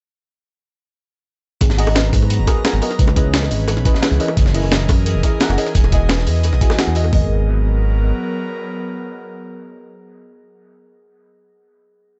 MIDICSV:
0, 0, Header, 1, 6, 480
1, 0, Start_track
1, 0, Key_signature, 5, "minor"
1, 0, Tempo, 344828
1, 2245, Time_signature, 4, 2, 24, 8
1, 16973, End_track
2, 0, Start_track
2, 0, Title_t, "Analog synth pad"
2, 0, Program_c, 0, 89
2, 2241, Note_on_c, 0, 54, 83
2, 2241, Note_on_c, 0, 59, 73
2, 2241, Note_on_c, 0, 82, 92
2, 4144, Note_off_c, 0, 54, 0
2, 4144, Note_off_c, 0, 59, 0
2, 4144, Note_off_c, 0, 82, 0
2, 4162, Note_on_c, 0, 52, 85
2, 4163, Note_on_c, 0, 61, 77
2, 4163, Note_on_c, 0, 71, 89
2, 5827, Note_off_c, 0, 61, 0
2, 5827, Note_off_c, 0, 71, 0
2, 5844, Note_on_c, 0, 68, 79
2, 5844, Note_on_c, 0, 70, 93
2, 5844, Note_on_c, 0, 75, 79
2, 7983, Note_off_c, 0, 70, 0
2, 7983, Note_off_c, 0, 75, 0
2, 8003, Note_on_c, 0, 75, 79
2, 9868, Note_off_c, 0, 52, 0
2, 9883, Note_off_c, 0, 68, 0
2, 9905, Note_off_c, 0, 75, 0
2, 9923, Note_on_c, 0, 54, 91
2, 9924, Note_on_c, 0, 59, 77
2, 9924, Note_on_c, 0, 70, 93
2, 14822, Note_off_c, 0, 54, 0
2, 14822, Note_off_c, 0, 59, 0
2, 14822, Note_off_c, 0, 70, 0
2, 16973, End_track
3, 0, Start_track
3, 0, Title_t, "Kalimba"
3, 0, Program_c, 1, 108
3, 2243, Note_on_c, 1, 68, 84
3, 2375, Note_off_c, 1, 68, 0
3, 2725, Note_on_c, 1, 71, 74
3, 2953, Note_off_c, 1, 71, 0
3, 2962, Note_on_c, 1, 68, 75
3, 3094, Note_off_c, 1, 68, 0
3, 3443, Note_on_c, 1, 75, 77
3, 3575, Note_off_c, 1, 75, 0
3, 3683, Note_on_c, 1, 68, 80
3, 3814, Note_off_c, 1, 68, 0
3, 4162, Note_on_c, 1, 71, 81
3, 4391, Note_off_c, 1, 71, 0
3, 4403, Note_on_c, 1, 68, 75
3, 4535, Note_off_c, 1, 68, 0
3, 4884, Note_on_c, 1, 75, 77
3, 5015, Note_off_c, 1, 75, 0
3, 5124, Note_on_c, 1, 68, 81
3, 5255, Note_off_c, 1, 68, 0
3, 5605, Note_on_c, 1, 71, 78
3, 5833, Note_off_c, 1, 71, 0
3, 5845, Note_on_c, 1, 68, 81
3, 5976, Note_off_c, 1, 68, 0
3, 6324, Note_on_c, 1, 75, 75
3, 6455, Note_off_c, 1, 75, 0
3, 6564, Note_on_c, 1, 68, 76
3, 6695, Note_off_c, 1, 68, 0
3, 7044, Note_on_c, 1, 70, 83
3, 7272, Note_off_c, 1, 70, 0
3, 7283, Note_on_c, 1, 68, 77
3, 7415, Note_off_c, 1, 68, 0
3, 7763, Note_on_c, 1, 75, 81
3, 7895, Note_off_c, 1, 75, 0
3, 8003, Note_on_c, 1, 68, 86
3, 8135, Note_off_c, 1, 68, 0
3, 8484, Note_on_c, 1, 71, 75
3, 8712, Note_off_c, 1, 71, 0
3, 8725, Note_on_c, 1, 68, 75
3, 8856, Note_off_c, 1, 68, 0
3, 9203, Note_on_c, 1, 80, 74
3, 9420, Note_off_c, 1, 80, 0
3, 9444, Note_on_c, 1, 68, 77
3, 9575, Note_off_c, 1, 68, 0
3, 9924, Note_on_c, 1, 68, 90
3, 10147, Note_off_c, 1, 68, 0
3, 16973, End_track
4, 0, Start_track
4, 0, Title_t, "Synth stab"
4, 0, Program_c, 2, 62
4, 2468, Note_on_c, 2, 59, 77
4, 2475, Note_on_c, 2, 66, 74
4, 2483, Note_on_c, 2, 68, 73
4, 2491, Note_on_c, 2, 82, 73
4, 2498, Note_on_c, 2, 75, 86
4, 3408, Note_off_c, 2, 59, 0
4, 3412, Note_off_c, 2, 66, 0
4, 3415, Note_off_c, 2, 68, 0
4, 3419, Note_off_c, 2, 82, 0
4, 3423, Note_off_c, 2, 75, 0
4, 3436, Note_on_c, 2, 59, 86
4, 3439, Note_on_c, 2, 66, 80
4, 3444, Note_on_c, 2, 68, 75
4, 3447, Note_on_c, 2, 70, 79
4, 3450, Note_on_c, 2, 75, 93
4, 3645, Note_off_c, 2, 59, 0
4, 3646, Note_off_c, 2, 66, 0
4, 3649, Note_off_c, 2, 68, 0
4, 3650, Note_off_c, 2, 70, 0
4, 3652, Note_off_c, 2, 75, 0
4, 3676, Note_on_c, 2, 59, 79
4, 3679, Note_on_c, 2, 66, 72
4, 3683, Note_on_c, 2, 68, 72
4, 3686, Note_on_c, 2, 70, 72
4, 3689, Note_on_c, 2, 80, 84
4, 3892, Note_off_c, 2, 59, 0
4, 3893, Note_off_c, 2, 66, 0
4, 3895, Note_off_c, 2, 68, 0
4, 3897, Note_off_c, 2, 70, 0
4, 3899, Note_off_c, 2, 80, 0
4, 3916, Note_on_c, 2, 59, 98
4, 3919, Note_on_c, 2, 66, 94
4, 3923, Note_on_c, 2, 68, 89
4, 3927, Note_on_c, 2, 70, 92
4, 3930, Note_on_c, 2, 75, 106
4, 4059, Note_off_c, 2, 59, 0
4, 4061, Note_off_c, 2, 66, 0
4, 4063, Note_off_c, 2, 68, 0
4, 4065, Note_off_c, 2, 70, 0
4, 4067, Note_off_c, 2, 75, 0
4, 4390, Note_on_c, 2, 61, 76
4, 4397, Note_on_c, 2, 64, 69
4, 4403, Note_on_c, 2, 68, 74
4, 4411, Note_on_c, 2, 71, 73
4, 4419, Note_on_c, 2, 75, 83
4, 5329, Note_off_c, 2, 61, 0
4, 5332, Note_off_c, 2, 64, 0
4, 5336, Note_off_c, 2, 68, 0
4, 5340, Note_off_c, 2, 71, 0
4, 5343, Note_off_c, 2, 75, 0
4, 5358, Note_on_c, 2, 61, 88
4, 5361, Note_on_c, 2, 64, 81
4, 5365, Note_on_c, 2, 68, 80
4, 5369, Note_on_c, 2, 71, 82
4, 5373, Note_on_c, 2, 75, 93
4, 5566, Note_off_c, 2, 61, 0
4, 5567, Note_off_c, 2, 64, 0
4, 5570, Note_off_c, 2, 68, 0
4, 5571, Note_off_c, 2, 71, 0
4, 5573, Note_off_c, 2, 75, 0
4, 5600, Note_on_c, 2, 61, 76
4, 5603, Note_on_c, 2, 64, 74
4, 5607, Note_on_c, 2, 68, 73
4, 5610, Note_on_c, 2, 71, 74
4, 5614, Note_on_c, 2, 78, 87
4, 5814, Note_off_c, 2, 61, 0
4, 5815, Note_off_c, 2, 64, 0
4, 5817, Note_off_c, 2, 68, 0
4, 5819, Note_off_c, 2, 71, 0
4, 5821, Note_off_c, 2, 78, 0
4, 5838, Note_on_c, 2, 61, 102
4, 5843, Note_on_c, 2, 64, 94
4, 5846, Note_on_c, 2, 68, 90
4, 5850, Note_on_c, 2, 70, 92
4, 5854, Note_on_c, 2, 75, 106
4, 5981, Note_off_c, 2, 61, 0
4, 5983, Note_off_c, 2, 64, 0
4, 5984, Note_off_c, 2, 68, 0
4, 5986, Note_off_c, 2, 70, 0
4, 5989, Note_off_c, 2, 75, 0
4, 6312, Note_on_c, 2, 61, 81
4, 6319, Note_on_c, 2, 64, 73
4, 6327, Note_on_c, 2, 68, 71
4, 6335, Note_on_c, 2, 70, 73
4, 6341, Note_on_c, 2, 75, 87
4, 7250, Note_off_c, 2, 61, 0
4, 7253, Note_off_c, 2, 64, 0
4, 7257, Note_off_c, 2, 68, 0
4, 7261, Note_off_c, 2, 70, 0
4, 7265, Note_off_c, 2, 75, 0
4, 7278, Note_on_c, 2, 61, 85
4, 7282, Note_on_c, 2, 64, 81
4, 7286, Note_on_c, 2, 68, 79
4, 7290, Note_on_c, 2, 70, 83
4, 7293, Note_on_c, 2, 75, 95
4, 7486, Note_off_c, 2, 61, 0
4, 7488, Note_off_c, 2, 64, 0
4, 7490, Note_off_c, 2, 68, 0
4, 7492, Note_off_c, 2, 70, 0
4, 7493, Note_off_c, 2, 75, 0
4, 7518, Note_on_c, 2, 61, 82
4, 7522, Note_on_c, 2, 64, 70
4, 7525, Note_on_c, 2, 68, 74
4, 7530, Note_on_c, 2, 70, 75
4, 7533, Note_on_c, 2, 78, 89
4, 7733, Note_off_c, 2, 61, 0
4, 7735, Note_off_c, 2, 64, 0
4, 7737, Note_off_c, 2, 68, 0
4, 7739, Note_off_c, 2, 70, 0
4, 7740, Note_off_c, 2, 78, 0
4, 7758, Note_on_c, 2, 61, 100
4, 7761, Note_on_c, 2, 64, 94
4, 7764, Note_on_c, 2, 68, 92
4, 7768, Note_on_c, 2, 70, 93
4, 7773, Note_on_c, 2, 75, 110
4, 7900, Note_off_c, 2, 61, 0
4, 7902, Note_off_c, 2, 64, 0
4, 7903, Note_off_c, 2, 68, 0
4, 7905, Note_off_c, 2, 70, 0
4, 7908, Note_off_c, 2, 75, 0
4, 8229, Note_on_c, 2, 59, 79
4, 8238, Note_on_c, 2, 64, 71
4, 8244, Note_on_c, 2, 66, 76
4, 8251, Note_on_c, 2, 68, 74
4, 8259, Note_on_c, 2, 75, 87
4, 9169, Note_off_c, 2, 59, 0
4, 9173, Note_off_c, 2, 64, 0
4, 9176, Note_off_c, 2, 66, 0
4, 9180, Note_off_c, 2, 68, 0
4, 9183, Note_off_c, 2, 75, 0
4, 9196, Note_on_c, 2, 59, 88
4, 9200, Note_on_c, 2, 64, 80
4, 9203, Note_on_c, 2, 66, 83
4, 9208, Note_on_c, 2, 68, 80
4, 9211, Note_on_c, 2, 75, 98
4, 9405, Note_off_c, 2, 59, 0
4, 9407, Note_off_c, 2, 64, 0
4, 9408, Note_off_c, 2, 66, 0
4, 9411, Note_off_c, 2, 68, 0
4, 9412, Note_off_c, 2, 75, 0
4, 9438, Note_on_c, 2, 59, 76
4, 9442, Note_on_c, 2, 64, 69
4, 9444, Note_on_c, 2, 66, 70
4, 9447, Note_on_c, 2, 68, 72
4, 9452, Note_on_c, 2, 78, 88
4, 9653, Note_off_c, 2, 59, 0
4, 9655, Note_off_c, 2, 64, 0
4, 9656, Note_off_c, 2, 66, 0
4, 9658, Note_off_c, 2, 68, 0
4, 9660, Note_off_c, 2, 78, 0
4, 9677, Note_on_c, 2, 59, 97
4, 9680, Note_on_c, 2, 64, 91
4, 9684, Note_on_c, 2, 66, 95
4, 9688, Note_on_c, 2, 68, 89
4, 9692, Note_on_c, 2, 75, 111
4, 9820, Note_off_c, 2, 59, 0
4, 9821, Note_off_c, 2, 64, 0
4, 9823, Note_off_c, 2, 66, 0
4, 9825, Note_off_c, 2, 68, 0
4, 9827, Note_off_c, 2, 75, 0
4, 9902, Note_on_c, 2, 59, 83
4, 9912, Note_on_c, 2, 66, 77
4, 9924, Note_on_c, 2, 68, 77
4, 9934, Note_on_c, 2, 70, 79
4, 9946, Note_on_c, 2, 75, 100
4, 14886, Note_off_c, 2, 59, 0
4, 14896, Note_off_c, 2, 66, 0
4, 14909, Note_off_c, 2, 68, 0
4, 14919, Note_off_c, 2, 70, 0
4, 14930, Note_off_c, 2, 75, 0
4, 16973, End_track
5, 0, Start_track
5, 0, Title_t, "Analog synth bass"
5, 0, Program_c, 3, 38
5, 2242, Note_on_c, 3, 32, 102
5, 2585, Note_off_c, 3, 32, 0
5, 2605, Note_on_c, 3, 32, 84
5, 2945, Note_off_c, 3, 32, 0
5, 2963, Note_on_c, 3, 44, 83
5, 3325, Note_on_c, 3, 30, 85
5, 3346, Note_off_c, 3, 44, 0
5, 3433, Note_off_c, 3, 30, 0
5, 3806, Note_on_c, 3, 32, 102
5, 3913, Note_off_c, 3, 32, 0
5, 4163, Note_on_c, 3, 37, 102
5, 4506, Note_off_c, 3, 37, 0
5, 4524, Note_on_c, 3, 37, 89
5, 4865, Note_off_c, 3, 37, 0
5, 4884, Note_on_c, 3, 32, 82
5, 5247, Note_on_c, 3, 35, 88
5, 5268, Note_off_c, 3, 32, 0
5, 5354, Note_off_c, 3, 35, 0
5, 5725, Note_on_c, 3, 37, 103
5, 5833, Note_off_c, 3, 37, 0
5, 6084, Note_on_c, 3, 30, 107
5, 6426, Note_off_c, 3, 30, 0
5, 6447, Note_on_c, 3, 30, 88
5, 6786, Note_off_c, 3, 30, 0
5, 6804, Note_on_c, 3, 42, 83
5, 7167, Note_on_c, 3, 28, 89
5, 7188, Note_off_c, 3, 42, 0
5, 7273, Note_off_c, 3, 28, 0
5, 7647, Note_on_c, 3, 30, 106
5, 7753, Note_off_c, 3, 30, 0
5, 8004, Note_on_c, 3, 28, 104
5, 8346, Note_off_c, 3, 28, 0
5, 8367, Note_on_c, 3, 28, 91
5, 8706, Note_off_c, 3, 28, 0
5, 8725, Note_on_c, 3, 40, 80
5, 9067, Note_off_c, 3, 40, 0
5, 9087, Note_on_c, 3, 35, 87
5, 9194, Note_off_c, 3, 35, 0
5, 9567, Note_on_c, 3, 40, 93
5, 9906, Note_off_c, 3, 40, 0
5, 9923, Note_on_c, 3, 32, 100
5, 11308, Note_off_c, 3, 32, 0
5, 16973, End_track
6, 0, Start_track
6, 0, Title_t, "Drums"
6, 2237, Note_on_c, 9, 60, 54
6, 2242, Note_on_c, 9, 36, 116
6, 2244, Note_on_c, 9, 42, 87
6, 2249, Note_off_c, 9, 42, 0
6, 2249, Note_on_c, 9, 42, 85
6, 2363, Note_on_c, 9, 38, 44
6, 2366, Note_on_c, 9, 40, 47
6, 2376, Note_off_c, 9, 60, 0
6, 2381, Note_off_c, 9, 36, 0
6, 2389, Note_off_c, 9, 42, 0
6, 2482, Note_on_c, 9, 46, 73
6, 2485, Note_on_c, 9, 42, 99
6, 2502, Note_off_c, 9, 38, 0
6, 2505, Note_off_c, 9, 40, 0
6, 2603, Note_on_c, 9, 60, 87
6, 2621, Note_off_c, 9, 46, 0
6, 2624, Note_off_c, 9, 42, 0
6, 2721, Note_on_c, 9, 38, 120
6, 2726, Note_off_c, 9, 38, 0
6, 2726, Note_on_c, 9, 38, 118
6, 2726, Note_on_c, 9, 42, 84
6, 2727, Note_off_c, 9, 42, 0
6, 2727, Note_on_c, 9, 42, 93
6, 2743, Note_off_c, 9, 60, 0
6, 2849, Note_off_c, 9, 42, 0
6, 2849, Note_on_c, 9, 42, 45
6, 2865, Note_off_c, 9, 38, 0
6, 2962, Note_on_c, 9, 36, 109
6, 2965, Note_on_c, 9, 40, 53
6, 2965, Note_on_c, 9, 46, 80
6, 2966, Note_off_c, 9, 42, 0
6, 2966, Note_on_c, 9, 42, 68
6, 3095, Note_on_c, 9, 60, 53
6, 3102, Note_off_c, 9, 36, 0
6, 3104, Note_off_c, 9, 40, 0
6, 3104, Note_off_c, 9, 46, 0
6, 3105, Note_off_c, 9, 42, 0
6, 3203, Note_on_c, 9, 42, 91
6, 3205, Note_off_c, 9, 42, 0
6, 3205, Note_on_c, 9, 42, 81
6, 3234, Note_off_c, 9, 60, 0
6, 3344, Note_off_c, 9, 42, 0
6, 3440, Note_on_c, 9, 42, 73
6, 3443, Note_on_c, 9, 36, 64
6, 3444, Note_off_c, 9, 42, 0
6, 3444, Note_on_c, 9, 42, 98
6, 3444, Note_on_c, 9, 60, 85
6, 3582, Note_off_c, 9, 36, 0
6, 3583, Note_off_c, 9, 60, 0
6, 3584, Note_off_c, 9, 42, 0
6, 3684, Note_on_c, 9, 38, 120
6, 3684, Note_on_c, 9, 42, 84
6, 3689, Note_off_c, 9, 38, 0
6, 3689, Note_on_c, 9, 38, 109
6, 3690, Note_off_c, 9, 42, 0
6, 3690, Note_on_c, 9, 42, 88
6, 3798, Note_off_c, 9, 42, 0
6, 3798, Note_on_c, 9, 42, 41
6, 3828, Note_off_c, 9, 38, 0
6, 3922, Note_on_c, 9, 60, 54
6, 3925, Note_on_c, 9, 46, 77
6, 3926, Note_off_c, 9, 42, 0
6, 3926, Note_on_c, 9, 42, 61
6, 4046, Note_on_c, 9, 40, 57
6, 4061, Note_off_c, 9, 60, 0
6, 4064, Note_off_c, 9, 46, 0
6, 4065, Note_off_c, 9, 42, 0
6, 4163, Note_on_c, 9, 36, 121
6, 4165, Note_on_c, 9, 42, 84
6, 4167, Note_off_c, 9, 42, 0
6, 4167, Note_on_c, 9, 42, 85
6, 4185, Note_off_c, 9, 40, 0
6, 4281, Note_on_c, 9, 60, 78
6, 4286, Note_on_c, 9, 40, 49
6, 4302, Note_off_c, 9, 36, 0
6, 4307, Note_off_c, 9, 42, 0
6, 4403, Note_on_c, 9, 36, 65
6, 4404, Note_on_c, 9, 42, 63
6, 4405, Note_off_c, 9, 42, 0
6, 4405, Note_on_c, 9, 42, 91
6, 4420, Note_off_c, 9, 60, 0
6, 4425, Note_off_c, 9, 40, 0
6, 4543, Note_off_c, 9, 36, 0
6, 4544, Note_off_c, 9, 42, 0
6, 4640, Note_on_c, 9, 42, 90
6, 4645, Note_off_c, 9, 42, 0
6, 4645, Note_on_c, 9, 38, 116
6, 4645, Note_on_c, 9, 42, 84
6, 4767, Note_on_c, 9, 60, 56
6, 4770, Note_off_c, 9, 38, 0
6, 4770, Note_on_c, 9, 38, 49
6, 4784, Note_off_c, 9, 42, 0
6, 4885, Note_on_c, 9, 46, 79
6, 4892, Note_on_c, 9, 42, 69
6, 4907, Note_off_c, 9, 60, 0
6, 4909, Note_off_c, 9, 38, 0
6, 5005, Note_off_c, 9, 42, 0
6, 5005, Note_on_c, 9, 42, 40
6, 5024, Note_off_c, 9, 46, 0
6, 5118, Note_on_c, 9, 60, 86
6, 5125, Note_off_c, 9, 42, 0
6, 5125, Note_on_c, 9, 42, 81
6, 5131, Note_off_c, 9, 42, 0
6, 5131, Note_on_c, 9, 42, 82
6, 5247, Note_on_c, 9, 40, 59
6, 5257, Note_off_c, 9, 60, 0
6, 5270, Note_off_c, 9, 42, 0
6, 5361, Note_on_c, 9, 42, 73
6, 5364, Note_on_c, 9, 36, 110
6, 5366, Note_off_c, 9, 42, 0
6, 5366, Note_on_c, 9, 42, 94
6, 5386, Note_off_c, 9, 40, 0
6, 5491, Note_on_c, 9, 38, 47
6, 5503, Note_off_c, 9, 36, 0
6, 5505, Note_off_c, 9, 42, 0
6, 5597, Note_on_c, 9, 60, 49
6, 5603, Note_off_c, 9, 38, 0
6, 5603, Note_on_c, 9, 38, 126
6, 5606, Note_off_c, 9, 38, 0
6, 5606, Note_on_c, 9, 38, 124
6, 5606, Note_on_c, 9, 42, 80
6, 5609, Note_off_c, 9, 42, 0
6, 5609, Note_on_c, 9, 42, 89
6, 5736, Note_off_c, 9, 60, 0
6, 5739, Note_off_c, 9, 42, 0
6, 5739, Note_on_c, 9, 42, 42
6, 5745, Note_off_c, 9, 38, 0
6, 5845, Note_on_c, 9, 46, 77
6, 5848, Note_off_c, 9, 42, 0
6, 5848, Note_on_c, 9, 42, 62
6, 5962, Note_on_c, 9, 60, 85
6, 5985, Note_off_c, 9, 46, 0
6, 5988, Note_off_c, 9, 42, 0
6, 6084, Note_on_c, 9, 36, 125
6, 6085, Note_on_c, 9, 42, 82
6, 6090, Note_off_c, 9, 42, 0
6, 6090, Note_on_c, 9, 42, 84
6, 6101, Note_off_c, 9, 60, 0
6, 6207, Note_on_c, 9, 40, 46
6, 6213, Note_on_c, 9, 38, 37
6, 6223, Note_off_c, 9, 36, 0
6, 6229, Note_off_c, 9, 42, 0
6, 6323, Note_on_c, 9, 46, 77
6, 6326, Note_on_c, 9, 42, 93
6, 6346, Note_off_c, 9, 40, 0
6, 6352, Note_off_c, 9, 38, 0
6, 6448, Note_on_c, 9, 60, 51
6, 6463, Note_off_c, 9, 46, 0
6, 6466, Note_off_c, 9, 42, 0
6, 6566, Note_on_c, 9, 38, 125
6, 6566, Note_on_c, 9, 42, 81
6, 6572, Note_off_c, 9, 42, 0
6, 6572, Note_on_c, 9, 42, 86
6, 6577, Note_off_c, 9, 38, 0
6, 6577, Note_on_c, 9, 38, 114
6, 6587, Note_off_c, 9, 60, 0
6, 6681, Note_off_c, 9, 42, 0
6, 6681, Note_on_c, 9, 42, 46
6, 6716, Note_off_c, 9, 38, 0
6, 6798, Note_off_c, 9, 42, 0
6, 6798, Note_on_c, 9, 42, 70
6, 6804, Note_on_c, 9, 36, 113
6, 6806, Note_on_c, 9, 40, 51
6, 6806, Note_on_c, 9, 46, 79
6, 6808, Note_on_c, 9, 60, 87
6, 6937, Note_off_c, 9, 42, 0
6, 6943, Note_off_c, 9, 36, 0
6, 6945, Note_off_c, 9, 40, 0
6, 6945, Note_off_c, 9, 46, 0
6, 6947, Note_off_c, 9, 60, 0
6, 7046, Note_on_c, 9, 42, 77
6, 7051, Note_off_c, 9, 42, 0
6, 7051, Note_on_c, 9, 42, 89
6, 7190, Note_off_c, 9, 42, 0
6, 7284, Note_on_c, 9, 36, 64
6, 7286, Note_on_c, 9, 42, 79
6, 7289, Note_on_c, 9, 60, 55
6, 7423, Note_off_c, 9, 36, 0
6, 7426, Note_off_c, 9, 42, 0
6, 7429, Note_off_c, 9, 60, 0
6, 7517, Note_on_c, 9, 42, 81
6, 7526, Note_off_c, 9, 42, 0
6, 7526, Note_on_c, 9, 38, 127
6, 7526, Note_on_c, 9, 42, 77
6, 7529, Note_off_c, 9, 38, 0
6, 7529, Note_on_c, 9, 38, 124
6, 7649, Note_off_c, 9, 42, 0
6, 7649, Note_on_c, 9, 42, 46
6, 7661, Note_on_c, 9, 60, 80
6, 7668, Note_off_c, 9, 38, 0
6, 7765, Note_on_c, 9, 46, 77
6, 7767, Note_off_c, 9, 42, 0
6, 7767, Note_on_c, 9, 42, 70
6, 7800, Note_off_c, 9, 60, 0
6, 7886, Note_on_c, 9, 40, 57
6, 7904, Note_off_c, 9, 46, 0
6, 7906, Note_off_c, 9, 42, 0
6, 8001, Note_on_c, 9, 42, 92
6, 8004, Note_on_c, 9, 36, 121
6, 8005, Note_off_c, 9, 42, 0
6, 8005, Note_on_c, 9, 42, 77
6, 8026, Note_off_c, 9, 40, 0
6, 8127, Note_on_c, 9, 40, 46
6, 8132, Note_on_c, 9, 60, 58
6, 8143, Note_off_c, 9, 36, 0
6, 8144, Note_off_c, 9, 42, 0
6, 8242, Note_on_c, 9, 42, 68
6, 8244, Note_off_c, 9, 42, 0
6, 8244, Note_on_c, 9, 36, 68
6, 8244, Note_on_c, 9, 42, 91
6, 8266, Note_off_c, 9, 40, 0
6, 8271, Note_off_c, 9, 60, 0
6, 8383, Note_off_c, 9, 36, 0
6, 8384, Note_off_c, 9, 42, 0
6, 8476, Note_on_c, 9, 38, 105
6, 8483, Note_on_c, 9, 42, 95
6, 8483, Note_on_c, 9, 60, 84
6, 8484, Note_off_c, 9, 38, 0
6, 8484, Note_off_c, 9, 42, 0
6, 8484, Note_on_c, 9, 38, 122
6, 8484, Note_on_c, 9, 42, 77
6, 8608, Note_off_c, 9, 38, 0
6, 8608, Note_on_c, 9, 38, 50
6, 8622, Note_off_c, 9, 60, 0
6, 8624, Note_off_c, 9, 42, 0
6, 8724, Note_on_c, 9, 42, 68
6, 8725, Note_on_c, 9, 46, 86
6, 8747, Note_off_c, 9, 38, 0
6, 8846, Note_off_c, 9, 42, 0
6, 8846, Note_on_c, 9, 42, 42
6, 8864, Note_off_c, 9, 46, 0
6, 8956, Note_off_c, 9, 42, 0
6, 8956, Note_on_c, 9, 42, 90
6, 8965, Note_off_c, 9, 42, 0
6, 8965, Note_on_c, 9, 42, 76
6, 8975, Note_on_c, 9, 60, 55
6, 9086, Note_on_c, 9, 40, 54
6, 9104, Note_off_c, 9, 42, 0
6, 9114, Note_off_c, 9, 60, 0
6, 9203, Note_on_c, 9, 36, 109
6, 9205, Note_on_c, 9, 42, 92
6, 9212, Note_off_c, 9, 42, 0
6, 9212, Note_on_c, 9, 42, 70
6, 9225, Note_off_c, 9, 40, 0
6, 9323, Note_on_c, 9, 60, 85
6, 9328, Note_on_c, 9, 38, 48
6, 9343, Note_off_c, 9, 36, 0
6, 9351, Note_off_c, 9, 42, 0
6, 9445, Note_off_c, 9, 38, 0
6, 9445, Note_on_c, 9, 38, 127
6, 9445, Note_on_c, 9, 42, 77
6, 9446, Note_off_c, 9, 38, 0
6, 9446, Note_on_c, 9, 38, 114
6, 9457, Note_off_c, 9, 42, 0
6, 9457, Note_on_c, 9, 42, 93
6, 9463, Note_off_c, 9, 60, 0
6, 9563, Note_off_c, 9, 42, 0
6, 9563, Note_on_c, 9, 42, 42
6, 9585, Note_off_c, 9, 38, 0
6, 9674, Note_off_c, 9, 42, 0
6, 9674, Note_on_c, 9, 42, 64
6, 9685, Note_on_c, 9, 46, 79
6, 9804, Note_on_c, 9, 60, 58
6, 9813, Note_off_c, 9, 42, 0
6, 9824, Note_off_c, 9, 46, 0
6, 9922, Note_on_c, 9, 43, 100
6, 9922, Note_on_c, 9, 46, 89
6, 9923, Note_on_c, 9, 36, 104
6, 9943, Note_off_c, 9, 60, 0
6, 10061, Note_off_c, 9, 43, 0
6, 10061, Note_off_c, 9, 46, 0
6, 10062, Note_off_c, 9, 36, 0
6, 16973, End_track
0, 0, End_of_file